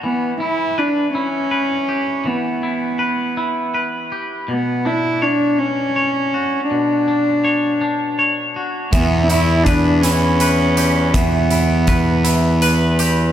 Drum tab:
HH |------|------|------|------|
BD |------|------|------|------|

HH |xxxxxx|xxxxxx|
BD |o-o---|o-o---|